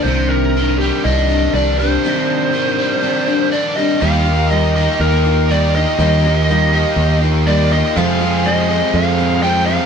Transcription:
0.03 C2 C3 C5
0.08 D#3 C4 D4 G4
0.29 A#4
0.54 D#3 C4 D4 G4
0.79 G3 G4
1.04 C2 D#3 C4 D4 G4 D#5
1.29 D#3 C4 D4 G4
1.53 C2 D#3 C4 D4 G4 D5
1.79 G3 D4 G4 C5
1.83 C4
2.04 C3 D#3 C4 D4 G4
2.52 D#3 C4 D4 G4
2.78 G3
3.01 D#3 C4 D4 G4
3.26 D#3 C4 D4 G4
3.51 D#3 C4 D4 G4 D5
3.76 G3 C4 D4 G4 D#5
4.00 D#2 D#3 G3 A#3 D#4 F4 G4 D#5 F5 A#5
4.25 A#3 D#4 F4
4.50 G3 A#3 D#4 F4 D#5
4.75 D#3 A#3 D#4 G4
5.00 D#2 A#4
5.25 A#3 D#4 F4
5.49 D#3 G3 A#3 D#4 F4 D5
5.53 G4
5.75 A#3 D#4 F4 D#5
5.99 D#2 D#3 G3 A#3 D#4 F4 G4 C6
6.25 A#3 D#4 F4
6.49 G3 A#3 D#4 F4
6.73 D#3 A#3 D#4 G4
6.96 D#2
7.22 A#3 D#4 F4
7.46 D#3 G3 A#3 D#4 F4 D5
7.50 G4
7.71 A#3 D#4 F4 D#5
7.95 F2 C3 F3 G#3 C4 F4 G#4 C5 F5
8.21 F3 G#3 C4 F4
8.45 F3 G#3 C4 F4 D#5
8.69 F2 C3 F3 G#3 C4 G#4
8.94 F2 F5
9.18 F3 G#3 C4 F4
9.42 F2 C3 F3 G#3 C4 F4 G5
9.46 G#4
9.66 G#3 C4 F4 F5
9.71 F3

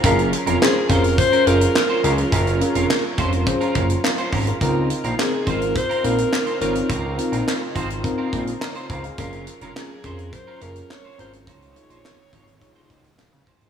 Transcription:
Already playing: A#4
0.03 F#1 F#3 C#4 F4 G#4 A#4, kick, closed hi-hat
0.19 closed hi-hat
0.32 muted clean electric guitar stroke, closed hi-hat
0.46 F1 C#4 F4 A#4, closed hi-hat
0.61 C#4 F4 G#4 C5, snare, clap
0.75 muted clean electric guitar stroke
0.89 F1 C#4 F4 G#4 A#4 C5, kick, closed hi-hat
1.04 muted clean electric guitar stroke, closed hi-hat
1.18 C5, muted clean electric guitar stroke, kick, closed hi-hat
1.32 C#4 F4 A#4, closed hi-hat
1.46 F#1 C#4 F4 G#4 A#4, closed hi-hat
1.61 muted clean electric guitar stroke, closed hi-hat
1.75 muted clean electric guitar stroke, snare, clap
1.90 C#4 F4 C5
2.04 C#2 C#4 F4 G#4 A#4, closed hi-hat
2.18 muted clean electric guitar stroke, closed hi-hat
2.32 F#1 C#4 F4 A#4, kick, closed hi-hat
2.47 closed hi-hat
2.61 C#4 F4 G#4 A#4, muted clean electric guitar stroke, closed hi-hat
2.75 F1 C#4 F4 A#4, closed hi-hat
2.90 snare, clap
3.04 muted clean electric guitar stroke
3.18 F1 C#4 F4 C5, kick, closed hi-hat
3.32 muted clean electric guitar stroke, closed hi-hat
3.46 C#4 F4 G#4 C5, muted clean electric guitar stroke, kick, closed hi-hat
3.61 C#4 F4 A#4, closed hi-hat
3.75 F#1 C#4 F4 A#4, kick, closed hi-hat
3.90 muted clean electric guitar stroke, closed hi-hat
4.04 muted clean electric guitar stroke, snare, clap
4.18 C#4 F4 C5, closed hi-hat
4.33 G#1 C#4 F4 A#4, kick, open hi-hat
4.47 G#4 A#4, muted clean electric guitar stroke, closed hi-hat
4.61 C#2 C#3 C4 D#4 F4 A#4, kick, closed hi-hat
4.89 muted clean electric guitar stroke, closed hi-hat
5.04 A#1 C4 F4 A#4, closed hi-hat
5.18 C4 D#4 F4 G#4 A#4, snare, clap
5.32 muted clean electric guitar stroke
5.46 G#1 C4 D#4 F4 A#4 C5, kick, closed hi-hat
5.61 muted clean electric guitar stroke, closed hi-hat
5.75 C5, muted clean electric guitar stroke, kick, closed hi-hat
5.89 C4 F4 A#4, closed hi-hat
6.04 A#1 C4 D#4 F4 A#4, closed hi-hat
6.18 muted clean electric guitar stroke, closed hi-hat
6.32 muted clean electric guitar stroke, snare, clap
6.46 C4 F4 C5, closed hi-hat
6.61 G#1 C4 D#4 F4 A#4 C#5, closed hi-hat
6.75 muted clean electric guitar stroke, closed hi-hat
6.89 C#2 C4 F4 A#4, kick, closed hi-hat
7.18 C4 D#4 F4 A#4, muted clean electric guitar stroke, closed hi-hat
7.32 A#1 C4 F4 A#4, closed hi-hat
7.48 snare, clap
7.61 muted clean electric guitar stroke
7.75 G#1 C4 F4 C5, kick, closed hi-hat
7.90 muted clean electric guitar stroke, closed hi-hat
8.04 C4 D#4 F4 A#4, muted clean electric guitar stroke, kick, closed hi-hat
8.18 C4 F4 A#4
8.32 A#1 C4 F4 A#4, kick, closed hi-hat
8.47 muted clean electric guitar stroke, closed hi-hat
8.61 C#5 D#5 A#5, muted clean electric guitar stroke, snare, clap
8.75 C4 F4 C5, closed hi-hat
8.90 C#2 C4 F4 A#4 C5 G#5, kick, closed hi-hat
9.04 G#4 F5, muted clean electric guitar stroke, closed hi-hat
9.18 F#1 F#3 C#4 F4 G#4 A#4, kick, closed hi-hat
9.33 closed hi-hat
9.47 muted clean electric guitar stroke, closed hi-hat
9.61 F1 C#4 F4 A#4, closed hi-hat
9.76 C#4 F4 G#4 A#4, snare, clap
9.90 muted clean electric guitar stroke
10.04 F1 C#4 F4 G#4 A#4 C5, kick, closed hi-hat
10.19 muted clean electric guitar stroke, closed hi-hat
10.33 C5, muted clean electric guitar stroke, kick, closed hi-hat
10.47 C#4 F4 A#4
10.61 F#1 C#4 F4 G#4 A#4, closed hi-hat
10.76 muted clean electric guitar stroke, closed hi-hat
10.90 C#5, muted clean electric guitar stroke, snare, clap
11.05 C#4 F4 C5
11.18 G#1 C#4 F4 G#4 A#4 C5, closed hi-hat
11.33 muted clean electric guitar stroke, closed hi-hat
11.47 C#2 C3 C#3 D#4 F4 C5 C#5, kick, closed hi-hat
11.62 closed hi-hat
11.75 D#4 F4 G#4 A#4, muted clean electric guitar stroke, closed hi-hat
11.82 C#5
11.90 A#1 D#4 F4 C5, closed hi-hat
12.05 snare, clap
12.19 muted clean electric guitar stroke
12.33 G#1 D#4 F4 C#5, kick, closed hi-hat
12.47 muted clean electric guitar stroke, closed hi-hat
12.61 D#4 F4 G#4 C#5, muted clean electric guitar stroke, kick, closed hi-hat
12.75 D#4 F4 C5
12.90 C#2 D#4 F4 C5 D#5, kick, closed hi-hat
13.04 muted clean electric guitar stroke, closed hi-hat
13.18 F5, muted clean electric guitar stroke, snare, clap
13.32 C#3, muted clean electric guitar stroke, closed hi-hat
13.46 D#4 F4 C5 G#5, kick, open hi-hat
13.61 G#1 D#4 F4 G#4 C5, closed hi-hat

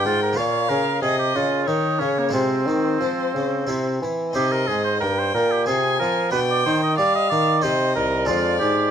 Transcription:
Already playing: C4 F4 G5
0.05 G#2 F4
0.23 A#4
0.33 A#3 F4
0.37 A#2 C#5 F5
0.69 C#3 A#4
1.02 C3 G#4 D#5
1.19 G4
1.35 C#3 F4
1.67 D#3 D#4 C#5
1.99 C#3 C#4
2.18 A#3
2.29 G#3 C4 F4 C5
2.33 C3 C4
2.67 D#3
3.00 F3
3.34 C#3
3.67 C3 C4 E4
4.02 E3
4.33 C3 C4 D#4 G4 D#5
4.52 A#4
4.67 G#2 G#4
4.84 C5
5.01 G2 A#4 G5
5.19 C5
5.34 A#2 A#4
5.52 G4
5.66 C3 C4 F4 G#4 G#5
6.00 F3 A#4
6.31 B2 D4 G4 B4 G5
6.51 D5
6.66 D#3 C5
6.83 D#5
6.97 G3 D5 F5
7.15 D#5
7.30 D#3 D5
7.62 C3 D#4 G4 C5 D#5
7.95 C2 A#4
8.25 G#3 D4 F4 D5
8.29 F2
8.59 G#2 G4

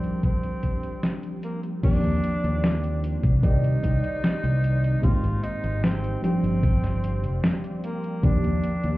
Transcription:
Already playing: F3 G3 C4 D4 G4
0.04 closed hi-hat
0.23 C4, kick, closed hi-hat
0.43 closed hi-hat
0.63 kick, closed hi-hat
0.83 closed hi-hat
1.03 snare, closed hi-hat
1.23 closed hi-hat
1.43 A#3, closed hi-hat
1.63 closed hi-hat
1.82 D#2 F3 A#3 C4 D4 F4 G4 C5 D5 G5, kick, closed hi-hat, crash
2.04 D#2, closed hi-hat
2.24 closed hi-hat
2.44 D#2, closed hi-hat
2.64 snare, closed hi-hat
2.84 closed hi-hat
3.04 closed hi-hat
3.23 C2, kick, closed hi-hat
3.42 D#3 A#3 C4 D#4 G4 D5 A#5, kick, closed hi-hat
3.64 closed hi-hat
3.83 C2, kick, closed hi-hat
4.04 closed hi-hat
4.24 snare, closed hi-hat
4.44 C2, closed hi-hat
4.64 closed hi-hat
4.84 closed hi-hat
5.02 G#1 G#3 A#3 C4 D#4 F4 G4 G5, kick, closed hi-hat
5.24 G#1, closed hi-hat
5.43 D#4, closed hi-hat
5.64 G#1, closed hi-hat
5.84 C4, snare, closed hi-hat
6.04 closed hi-hat
6.22 F3 G3 C4 D4 G4 D5 F5 C6, closed hi-hat
6.43 G1, closed hi-hat
6.63 kick, closed hi-hat
6.84 snare, closed hi-hat
7.04 closed hi-hat
7.24 F1, closed hi-hat
7.44 snare, closed hi-hat
7.64 closed hi-hat
7.84 A#3, closed hi-hat
8.04 closed hi-hat
8.23 D#2 F3 A#3 C4 D4 G4 D5 C6, kick, closed hi-hat
8.44 D#2, closed hi-hat
8.64 closed hi-hat
8.84 D#2, closed hi-hat

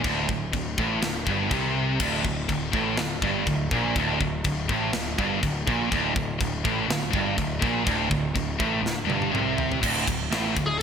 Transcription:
0.03 D1 D2, kick, china
0.27 D1 D2, kick
0.53 D1 D2, kick, china
0.78 A1 A2, kick
1.01 D1 D2, snare, china
1.26 G1 G2, kick
1.50 C2 C3, kick, china
2.00 D1 D2, kick, china, crash
2.24 D1 D2, kick
2.48 D1 D2, kick, china
2.72 A1 A2, kick
2.97 D1 D2, snare, china
3.22 G1 G2, kick
3.45 D1 D2, kick, china
3.71 A#1 A#2, kick
3.96 D1 D2, kick, china
4.20 D1 D2, kick
4.44 D1 D2, kick, china
4.68 A1 A2, kick
4.93 D1 D2, snare, china
5.18 G1 G2, kick
5.43 D1 D2, kick, china
5.67 A#1 A#2, kick
5.91 D1 D2, kick, china
6.15 D1 D2, kick
6.38 D1 D2, kick, china
6.65 A1 A2, kick
6.88 D1 D2, snare, china
7.11 G1 G2, kick
7.15 G2
7.36 D1 D2, kick, china
7.59 A#1 A#2, kick
7.84 D1 D2, kick, china
8.09 D1 D2, kick
8.34 D1 D2, kick, china
8.58 A1 A2, kick
8.83 D1 D2, snare
9.05 G2
9.09 G1, high tom
9.22 high tom
9.31 C2 C3, mid tom
9.58 floor tom
9.72 floor tom
9.82 D1 D2, kick, crash
10.06 D1 D2, kick, ride
10.31 A1 A2, snare, ride
10.56 D1 D2, kick, ride
10.67 G#4
10.78 A4

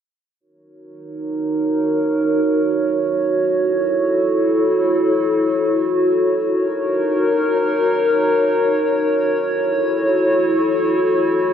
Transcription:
0.40 D#4 F#4 A#4 C#5
3.41 E4 A4
6.40 D#4 A#4 C#5
9.40 E4 F#4 A4

